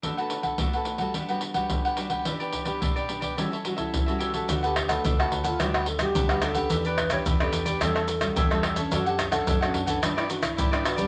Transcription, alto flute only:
\new Staff \with { instrumentName = "Alto flute" } { \time 4/4 \key d \major \tempo 4 = 108 r1 | r2 r8 fis'16 e'8. fis'8~ | fis'16 g'8 a'8 fis'8 f'16 fis'8 a'16 g'8. a'8~ | a'16 b'8 cis''8 a'8 g'16 a'4. r8 |
fis'16 g'8 a'8 fis'8 d'16 d'16 e'16 fis'16 e'8. fis'16 g'16 | }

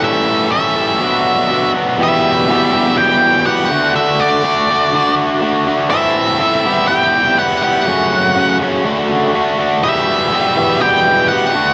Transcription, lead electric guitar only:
\new Staff \with { instrumentName = "Lead electric guitar" } { \time 4/4 \key e \minor \tempo 4 = 122 e''4 e''2~ e''8 r8 | e''2 g''4 fis''4 | e''8 d''2 r4. | e''2 g''4 fis''8 fis''8~ |
fis''4. r2 r8 | e''2 g''4 fis''4 | }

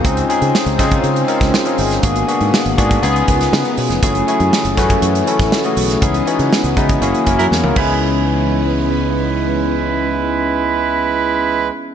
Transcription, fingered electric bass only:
\new Staff \with { instrumentName = "Fingered electric bass" } { \clef bass \time 4/4 \key fis \mixolydian \tempo 4 = 120 cis,8 r16 cis16 r16 cis,16 cis8 cis8 r16 cis,16 r8 g,,8 | gis,,8 r16 gis,16 r16 gis,,16 gis,8 cis,8 cis,8 cis16 r16 b,16 eis,,16 | fis,,8 r16 fis,16 r16 fis,,16 fis,8 fis,8 r16 a,,16 r8 b,,8 | cis,8 r16 cis16 r16 cis,16 cis8 fis,,16 r16 fis,,16 fis,16 e,16 cis,16 cis,8~ |
cis,1~ | cis,1 | }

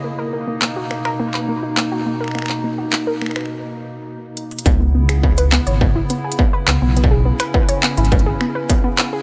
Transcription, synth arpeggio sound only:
\new Staff \with { instrumentName = "Synth arpeggio sound" } { \time 4/4 \key cis \dorian \tempo 4 = 104 ais16 ais'16 ais16 ais16 ais16 fis'16 ais16 ais'16 ais16 b'16 ais16 dis'16 ais16 fis'16 ais16 ais'16 | ais16 ais16 ais16 fis'16 ais16 ais'16 ais16 b'16 r2 | b16 b16 b16 gis'16 b16 b'16 b16 cis''16 b16 e'16 b16 gis'16 b16 b'16 b16 b16 | b16 gis'16 b16 b'16 b16 cis''16 b16 e'16 b16 gis'16 b16 b'16 b16 b16 b16 gis'16 | }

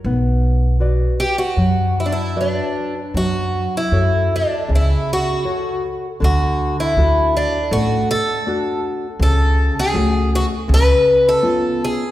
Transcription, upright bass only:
\new Staff \with { instrumentName = "Upright bass" } { \clef bass \time 4/4 \key b \minor \tempo 4 = 80 b,,2 fis,2 | \key fis \minor fis,4 fis,4 cis,8 r4. | d,4 d,4 a,,8 r4. | cis,4 cis,4 cis,8 r4. | }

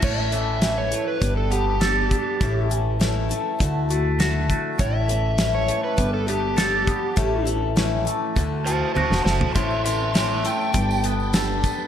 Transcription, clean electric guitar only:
\new Staff \with { instrumentName = "Clean electric guitar" } { \clef bass \time 4/4 \key a \mixolydian \tempo 4 = 101 a,8 e8 e8 a8 g8 b8 a'8 b8 | a,8 e8 e8 a8 d8 a8 fis'8 a8 | a,8 e8 e8 a8 g8 b8 a'8 b8 | a,8 e8 e8 a8 d8 a8 fis'8 a8 |
a,8 e8 e8 a8 g8 b8 a'8 b8 | }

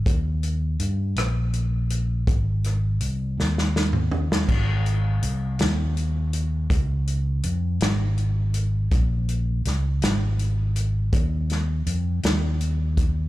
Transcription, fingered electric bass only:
\new Staff \with { instrumentName = "Fingered electric bass" } { \clef bass \time 6/8 \key aes \major \tempo 4. = 54 ees,4 g,8 bes,,4. | aes,,4 c,8 ees,4. | aes,,4 c,8 ees,4. | des,4 f,8 aes,,4. |
bes,,4 des,8 aes,,4. | ees,4 f,8 ees,4. | }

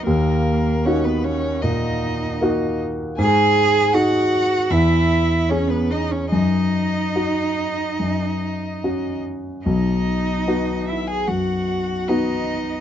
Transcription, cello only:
\new Staff \with { instrumentName = "Cello" } { \time 4/4 \key b \major \tempo 4 = 75 ais4 cis'16 b16 cis'8 dis'4. r8 | gis'4 fis'4 e'4 cis'16 b16 dis'16 cis'16 | dis'2.~ dis'8 r8 | dis'4. e'16 gis'16 fis'4 dis'4 | }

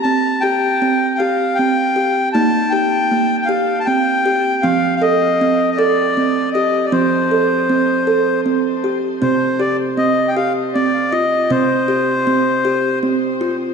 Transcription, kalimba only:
<<
  \new Staff \with { instrumentName = "Kalimba" } { \time 6/8 \key c \dorian \tempo 4. = 52 r8 g'8 c'8 g'8 c'8 g'8 | bes8 g'8 bes8 g'8 c'8 g'8 | c'8 a'8 c'8 a'8 c'8 g'8 | c'8 a'8 c'8 a'8 c'8 g'8 |
c'8 g'8 c'8 g'8 c'8 f'8 | c'8 g'8 c'8 g'8 c'8 f'8 | }
  \new Staff \with { instrumentName = "Kalimba" } { \clef bass \time 6/8 \key c \dorian c'2. | ees'2. | f2. | f2. |
c2. | c2. | }
>>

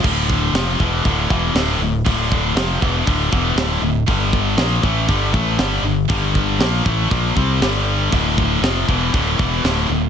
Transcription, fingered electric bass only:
\new Staff \with { instrumentName = "Fingered electric bass" } { \clef bass \time 4/4 \key d \minor \tempo 4 = 119 d,,4 f,,8 e,,8 d,,8 e,,8 d,,8 d,,8 | d,,4 f,,8 e,,8 d,,8 e,,8 d,,8 d,,8 | g,,4 bes,,8 a,,8 g,,8 a,,8 g,,8 g,,8 | g,,4 bes,,8 a,,8 bes,,8 c,8 g,,4 |
d,,4 f,,8 e,,8 d,,8 e,,8 d,,8 d,,8 | }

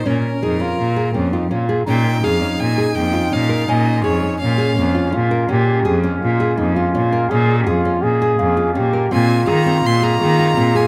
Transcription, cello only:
\new Staff \with { instrumentName = "Cello" } { \clef bass \time 5/4 \key bes \dorian \tempo 4 = 166 bes,8 r8 f,4 bes,4 f,4 bes,4 | bes,4 f,4 bes,4 f,4 bes,4 | bes,4 f,4 bes,4 f,4 bes,4 | bes,4 f,4 bes,4 f,4 bes,4 |
bes,4 f,4 bes,4 f,4 bes,4 | bes,4 ees4 bes,4 ees4 bes,4 | }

